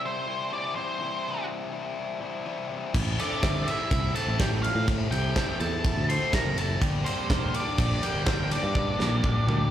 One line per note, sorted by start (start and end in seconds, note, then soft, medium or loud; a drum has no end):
0.00 0.51 C3 loud
0.00 0.52 E3 loud
0.00 0.29 G3 medium
0.00 0.28 C4 medium
0.00 0.27 E4 medium
0.06 0.50 C5 medium
0.28 0.52 G3 medium
0.28 0.53 C4 medium
0.28 0.54 E4 medium
0.52 0.99 C3 medium
0.52 1.00 E3 loud
0.52 0.78 G3 medium
0.52 0.77 C4 loud
0.52 0.76 E4 loud
0.52 0.75 D5 loud
0.76 1.00 G3 medium
0.76 1.02 C4 medium
0.76 1.02 E4 medium
0.76 1.45 C5 medium
1.00 1.97 C3 medium
1.00 2.45 E3 loud
1.00 1.73 G3 loud
1.00 1.73 C4 loud
1.00 1.72 E4 loud
1.72 2.22 G3 medium
1.72 2.22 C4 medium
1.72 2.20 E4 medium
2.21 2.45 G3 medium
2.21 2.46 C4 medium
2.21 2.47 E4 medium
2.45 2.92 C3 loud
2.45 2.93 E3 medium
2.45 2.70 G3 medium
2.45 2.70 C4 loud
2.45 2.68 E4 loud
2.69 2.93 G3 medium
2.69 2.94 C4 medium
2.69 2.94 E4 medium
2.93 3.15 A1 loud
2.93 4.38 A2 medium
2.93 4.39 E3 medium
2.93 3.68 A3 medium
2.93 3.67 C4 loud
2.93 3.65 E4 loud
2.93 kick loud
2.93 crash loud
3.19 3.42 E3 medium
3.19 3.43 C4 medium
3.19 3.65 D4 medium
3.19 3.43 E4 medium
3.19 3.43 A4 medium
3.19 3.69 D5 medium
3.19 ride medium
3.43 3.63 G1 loud
3.43 3.74 E3 medium
3.43 3.75 C4 medium
3.43 3.75 E4 medium
3.43 3.75 A4 medium
3.43 kick loud
3.43 snare loud
3.43 ride loud
3.66 4.16 A3 medium
3.66 4.15 C4 medium
3.66 4.14 E4 medium
3.66 4.13 E4 medium
3.66 4.17 E5 medium
3.66 ride medium
3.91 4.12 C2 loud
3.91 kick loud
3.91 ride loud
4.15 4.39 E3 medium
4.15 4.38 A3 medium
4.15 4.39 C4 medium
4.15 4.40 E4 medium
4.15 4.39 E4 medium
4.15 4.39 A4 medium
4.15 4.38 A4 medium
4.15 4.40 A5 loud
4.15 ride medium
4.27 4.68 A1 medium
4.38 4.85 A2 medium
4.38 4.86 E3 loud
4.38 4.71 E3 medium
4.38 4.64 A3 loud
4.38 4.62 C4 loud
4.38 4.71 C4 medium
4.38 4.71 E4 medium
4.38 4.61 E4 loud
4.38 4.51 G4 medium
4.38 4.72 A4 medium
4.38 4.47 G5 loud
4.38 kick loud
4.38 snare loud
4.38 ride loud
4.63 4.86 A3 medium
4.63 4.87 C4 medium
4.63 4.87 E4 medium
4.63 4.88 F4 medium
4.63 4.86 F5 medium
4.63 ride medium
4.75 5.06 A2 loud
4.86 5.84 A2 medium
4.86 5.84 E3 medium
4.86 5.61 A3 loud
4.86 5.60 C4 loud
4.86 5.58 E4 loud
4.86 kick loud
4.86 ride medium
5.11 5.32 C2 medium
5.11 5.35 E3 medium
5.11 5.35 C4 medium
5.11 5.35 E4 medium
5.11 5.57 G4 medium
5.11 5.36 A4 medium
5.11 5.57 G5 medium
5.11 ride medium
5.36 5.67 E3 medium
5.36 5.68 C4 medium
5.36 5.68 E4 medium
5.36 5.68 A4 medium
5.36 kick loud
5.36 snare loud
5.36 ride medium
5.60 5.91 E2 medium
5.60 6.08 A3 medium
5.60 6.07 C4 medium
5.60 6.06 E4 medium
5.60 6.06 A4 medium
5.60 6.05 A5 medium
5.60 ride medium
5.84 kick loud
5.84 ride loud
5.96 6.17 D2 medium
6.07 6.32 E3 medium
6.07 6.32 A3 medium
6.07 6.32 C4 medium
6.07 6.33 E4 medium
6.07 6.32 E4 medium
6.07 6.33 A4 medium
6.07 6.32 C5 medium
6.07 6.34 C6 loud
6.07 ride medium
6.32 6.79 A2 medium
6.32 6.80 E3 loud
6.32 6.64 E3 medium
6.32 6.57 A3 medium
6.32 6.64 C4 medium
6.32 6.56 C4 loud
6.32 6.65 E4 medium
6.32 6.55 E4 loud
6.32 6.65 A4 medium
6.32 6.57 A#4 medium
6.32 6.58 A#5 loud
6.32 kick loud
6.32 snare loud
6.32 ride loud
6.45 6.76 F#1 medium
6.56 6.81 A3 medium
6.56 6.80 C4 medium
6.56 6.80 E4 medium
6.56 6.81 A4 medium
6.56 6.81 A5 medium
6.56 snare soft
6.56 ride medium
6.79 7.02 G1 loud
6.79 8.25 G2 loud
6.79 7.78 D3 loud
6.79 7.55 G3 medium
6.79 7.54 A#3 loud
6.79 7.53 D4 loud
6.79 7.53 G4 loud
6.79 kick loud
6.79 ride loud
7.05 7.28 G3 medium
7.05 7.29 A#3 medium
7.05 7.51 C4 medium
7.05 7.30 D4 medium
7.05 7.29 A#4 medium
7.05 7.55 C5 medium
7.05 ride medium
7.30 7.50 E1 loud
7.30 7.61 G3 medium
7.30 7.61 A#3 medium
7.30 7.62 D4 medium
7.30 7.62 A#4 medium
7.30 kick loud
7.30 snare loud
7.30 ride loud
7.53 8.03 G3 medium
7.53 8.02 A#3 medium
7.53 8.02 D4 medium
7.53 8.00 D4 medium
7.53 8.01 G4 medium
7.53 8.05 D5 medium
7.53 ride medium
7.78 7.99 A#1 loud
7.78 kick loud
7.78 ride loud
8.02 8.25 G3 medium
8.02 8.26 G3 medium
8.02 8.26 A#3 medium
8.02 8.27 D4 medium
8.02 8.26 D4 medium
8.02 8.26 G4 medium
8.02 8.49 G4 medium
8.02 8.27 A#4 medium
8.02 8.53 G5 loud
8.02 ride medium
8.14 8.56 G1 medium
8.25 8.73 G2 medium
8.25 8.74 D3 loud
8.25 8.51 G3 loud
8.25 8.58 G3 medium
8.25 8.50 A#3 loud
8.25 8.58 A#3 medium
8.25 8.50 D4 loud
8.25 8.58 D4 medium
8.25 8.49 G4 loud
8.25 8.59 A#4 medium
8.25 kick loud
8.25 snare loud
8.25 ride loud
8.50 8.74 G3 medium
8.50 8.75 A#3 medium
8.50 8.75 D4 medium
8.50 9.71 D4 medium
8.50 8.75 G4 medium
8.50 9.71 D5 medium
8.50 snare soft
8.50 ride medium
8.63 8.94 G2 loud
8.75 9.71 G2 loud
8.75 9.71 D3 loud
8.75 9.48 G3 loud
8.75 9.47 A#3 loud
8.75 9.46 D4 loud
8.75 9.46 G4 medium
8.75 kick loud
8.99 9.20 A#1 medium
8.99 9.22 G3 medium
8.99 9.22 A#3 medium
8.99 9.23 D4 medium
8.99 9.24 A#4 medium
8.99 snare medium
9.24 9.55 G3 medium
9.24 9.55 A#3 medium
9.24 9.55 D4 medium
9.24 9.56 A#4 medium
9.24 kick loud
9.24 mid tom medium
9.47 9.71 D2 medium
9.47 9.71 G3 medium
9.47 9.71 A#3 medium
9.47 9.71 D4 medium
9.47 9.71 G4 medium
9.47 mid tom medium